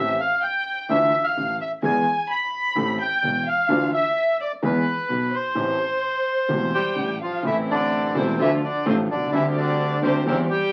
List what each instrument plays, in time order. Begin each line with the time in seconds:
Already playing: grand piano A1 A2 E3 A3 C4 G4, double bass A1, violin E5, bandoneon E5
0.20 violin F5, bandoneon F5
0.43 bandoneon G5, violin G5
0.89 double bass D2, grand piano D2 D3 E3 A3 D4 F4, bandoneon E5, violin E5
1.24 bandoneon F5, violin F5
1.37 double bass A1, grand piano A1 A2
1.61 violin E5, bandoneon E5
1.82 grand piano E2 E3 G#3 B3 G#4, double bass E2, violin G#5, bandoneon G#5
2.30 violin B5, bandoneon B5
2.75 grand piano A1 A2 E3 A3 C4 A4, double bass A1
3.01 violin G5, bandoneon G5
3.23 grand piano E1 E2, double bass E1
3.46 violin F5, bandoneon F5
3.69 grand piano D2 D3 E3 A3 D4 F4, double bass D2
3.94 bandoneon E5, violin E5
4.41 violin D5, bandoneon D5
4.62 grand piano E2 E3 G#3 B3 G#4, double bass E2, bandoneon B4, violin B4
5.09 grand piano B1 B2, double bass B1
5.34 violin C5, bandoneon C5
5.55 grand piano A1 A2 E3 A3 C4 G4, double bass A1
6.49 grand piano E1 E2 E3 A3 C4 G4, double bass E1
6.74 bandoneon G3 G4, violin G5
6.96 grand piano A1 A2, double bass A1
7.22 bandoneon F3 F4, violin F5
7.43 double bass A1, grand piano A1 A2 E3 A3 C4 A4, bandoneon E3 E4, string section A3 C4 E4, violin E5
7.70 bandoneon D3 D4, violin D5
8.14 grand piano E1 E2 E3 A3 C4 A4, double bass E1, bandoneon C3 C4, string section A3 C4 E4
8.18 violin C5
8.38 double bass D2, grand piano D2 D3 F3 A3 D4 A4, bandoneon E3 E4, string section A3 D4 F4, violin E5
8.64 bandoneon D3 D4, violin D5
8.85 double bass A1, grand piano A1 A2 F3 A3 D4 A4, bandoneon C3 C4, string section A3 D4 F4
8.89 violin C5
9.10 double bass C2, bandoneon D3 D4, violin D5
9.14 grand piano B1
9.22 grand piano C2
9.26 grand piano C#2
9.31 double bass D2, grand piano D2 D3 G3 C4, bandoneon E3 E4, string section C4 D4 G4
9.35 grand piano G4, violin E5
9.57 bandoneon D3 D4, violin D5
10.02 grand piano D2 D3 G3 C4 G4, double bass D2, bandoneon C3 C4, string section C4 D4 G4, violin C5
10.26 double bass E2, grand piano E2 E3 G3 C4 G4, bandoneon C3 C4, string section C4 E4 G4, violin C5
10.49 bandoneon G3 G4, violin G5